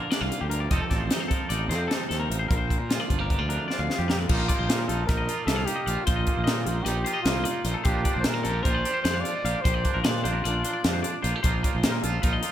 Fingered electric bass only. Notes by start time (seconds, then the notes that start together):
0.21 C2
0.41 D2
0.71 F1
0.91 A1
1.50 A1
1.69 F2
2.10 D#2
2.30 A1
2.50 A#1
2.80 A#2
3.10 G1
3.40 D2
3.79 D2
3.99 F2
4.29 A#1
4.59 A#1
4.69 A#2
4.89 A#1
5.09 A#1
5.47 C2
5.87 A#1
6.07 A#1
6.37 A#1
6.47 A#2
6.66 A#1
6.86 A#1
7.25 C2
7.65 A#1
7.85 A#1
8.16 A#1
8.25 A#2
8.45 A#1
8.65 A#1
9.05 F2
9.44 A#1
9.65 A#1
9.95 A#1
10.05 A#2
10.25 A#1
10.45 A#1
10.85 F2
11.24 A#1
11.44 A#1
11.75 A#1
11.84 A#2
12.04 A#1
12.23 A#1